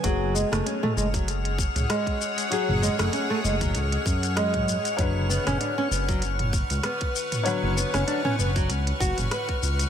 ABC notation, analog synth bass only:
X:1
M:4/4
L:1/16
Q:"Swing 16ths" 1/4=97
K:Bdor
V:1 name="Analog synth bass" clef=bass
F,,,3 F,,, z2 F,,,4- F,,, C,, z4 | z F,,, z F,,, z2 F,,,2 C,, z F,,4- F,, z | F,,,3 F,,, z2 F,,,4- F,,, C,, z4 | z F,,, z F,,, z2 F,,,2 C,, z F,,, F,,, z2 C,, z |]